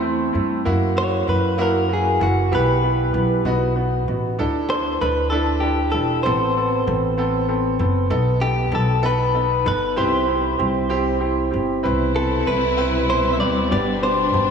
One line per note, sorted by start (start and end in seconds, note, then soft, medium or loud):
0.00 0.30 E2 loud
0.00 0.28 A3 medium
0.00 0.28 C4 medium
0.00 0.29 E4 medium
0.00 0.32 C5 medium
0.33 0.64 G2 medium
0.33 0.59 A3 medium
0.33 0.59 C4 medium
0.33 0.59 E4 medium
0.65 1.24 F#2 loud
0.65 0.91 A#3 loud
0.65 0.91 E4 medium
0.65 0.91 F#4 loud
0.95 1.21 A#3 medium
0.95 1.21 E4 medium
0.95 1.22 F#4 medium
0.95 1.29 C#5 loud
1.26 2.16 F#2 loud
1.26 1.52 A#3 medium
1.26 1.52 E4 medium
1.26 1.53 F#4 medium
1.26 1.60 B4 loud
1.58 1.84 A#3 loud
1.58 1.84 E4 medium
1.58 1.84 F#4 loud
1.58 1.92 A#4 medium
1.89 2.14 A#3 medium
1.89 2.15 E4 medium
1.89 2.15 F#4 medium
1.93 2.22 G#4 medium
2.20 2.50 F#1 loud
2.20 2.46 A#3 medium
2.20 2.46 E4 medium
2.20 2.46 F#4 medium
2.20 2.53 F#4 medium
2.52 3.10 B1 loud
2.52 2.77 B3 medium
2.52 2.77 E4 medium
2.52 2.77 G4 loud
2.52 3.74 B4 medium
2.83 3.08 B3 medium
2.83 3.08 E4 medium
2.83 3.09 G4 medium
3.13 3.43 B1 loud
3.13 3.39 B3 medium
3.13 3.39 E4 medium
3.13 3.39 G4 medium
3.45 4.03 B1 loud
3.45 3.71 B3 medium
3.45 3.71 D#4 medium
3.45 3.71 F#4 loud
3.76 4.02 B3 medium
3.76 4.02 D#4 medium
3.76 4.02 F#4 medium
4.08 4.37 A1 medium
4.08 4.33 B3 medium
4.08 4.34 D#4 medium
4.08 4.34 F#4 medium
4.38 4.97 D2 loud
4.38 4.64 D4 medium
4.38 4.64 E4 medium
4.38 4.65 A4 loud
4.70 4.96 D4 medium
4.70 4.96 E4 medium
4.70 4.96 A4 medium
4.70 5.01 C5 loud
5.01 5.90 D2 loud
5.01 5.27 D4 medium
5.01 5.27 E4 medium
5.01 5.27 A4 medium
5.01 5.30 B4 medium
5.30 5.58 D4 loud
5.30 5.58 E4 medium
5.30 5.63 A4 medium
5.30 5.58 A4 medium
5.60 5.88 D4 medium
5.60 5.89 E4 medium
5.60 5.94 G4 medium
5.60 5.89 A4 medium
5.92 6.23 E1 medium
5.92 6.20 D4 medium
5.92 6.20 E4 medium
5.92 6.23 A4 medium
5.92 6.20 A4 medium
6.23 6.83 A1 loud
6.23 6.51 B3 medium
6.23 6.51 C4 medium
6.23 6.51 A4 loud
6.23 7.43 C5 medium
6.57 6.82 B3 medium
6.57 6.82 C4 medium
6.57 6.82 A4 medium
6.87 7.76 A1 loud
6.87 7.12 B3 medium
6.87 7.13 C4 medium
6.87 7.13 A4 medium
7.18 7.43 B3 medium
7.18 7.43 C4 medium
7.18 7.44 A4 medium
7.48 7.74 B3 medium
7.48 7.74 C4 medium
7.48 7.74 A4 medium
7.79 8.08 F#1 loud
7.79 8.05 B3 medium
7.79 8.05 C4 medium
7.79 8.05 A4 medium
8.10 8.69 B1 loud
8.10 8.36 B3 medium
8.10 8.36 D#4 medium
8.10 8.36 A4 loud
8.41 8.67 B3 medium
8.41 8.67 D#4 medium
8.41 8.73 G4 medium
8.41 8.67 A4 medium
8.72 9.61 B1 loud
8.72 8.98 B3 medium
8.72 8.98 D#4 medium
8.72 8.98 A4 medium
8.72 9.05 A4 medium
9.02 9.29 B3 medium
9.02 9.29 D#4 medium
9.02 9.29 A4 loud
9.02 9.67 B4 loud
9.34 9.60 B3 medium
9.34 9.60 D#4 medium
9.34 9.60 A4 medium
9.65 9.95 G1 loud
9.65 9.91 B3 medium
9.65 9.91 D#4 medium
9.65 9.92 A4 medium
9.65 9.97 B4 loud
9.96 10.56 C2 loud
9.96 10.22 C4 loud
9.96 10.23 E4 medium
9.96 10.23 G4 loud
9.96 11.18 C5 loud
10.27 10.53 C4 medium
10.27 10.54 E4 medium
10.27 10.54 G4 medium
10.58 11.49 C2 loud
10.58 10.85 C4 medium
10.58 10.85 E4 medium
10.58 10.85 G4 medium
10.89 11.16 C4 medium
10.89 11.16 E4 medium
10.89 11.16 G4 loud
11.20 11.47 C4 medium
11.20 11.47 E4 medium
11.20 11.47 G4 medium
11.51 11.83 G1 medium
11.51 11.78 C4 medium
11.51 11.78 E4 medium
11.51 11.78 G4 medium
11.83 12.44 C2 loud
11.83 14.51 B2 medium
11.83 13.70 C3 medium
11.83 14.51 G3 medium
11.83 12.10 C4 medium
11.83 12.10 E4 medium
11.83 13.71 E4 medium
11.83 12.10 B4 medium
12.15 12.41 C4 medium
12.15 12.41 E4 medium
12.15 12.48 A4 medium
12.15 12.41 B4 medium
12.46 13.37 C2 loud
12.46 12.72 C4 medium
12.46 12.73 E4 medium
12.46 12.73 B4 medium
12.46 13.09 B4 loud
12.77 13.04 C4 loud
12.77 13.04 E4 medium
12.77 13.04 B4 loud
13.08 13.35 C4 medium
13.08 13.35 E4 medium
13.08 13.35 B4 medium
13.08 13.33 C5 loud
13.33 13.40 E5 medium
13.40 13.70 D2 medium
13.40 13.66 C4 medium
13.40 13.66 E4 medium
13.40 13.67 B4 medium
13.40 13.71 D5 loud
13.71 14.30 G1 loud
13.71 13.97 B3 medium
13.71 13.97 D4 medium
13.71 14.51 D4 medium
13.71 13.97 G4 loud
13.71 14.03 D5 loud
14.02 14.28 B3 medium
14.02 14.29 D4 medium
14.02 14.29 G4 medium
14.02 14.51 C5 loud
14.34 14.51 G1 loud
14.34 14.51 B3 medium
14.34 14.51 D4 medium
14.34 14.51 G4 medium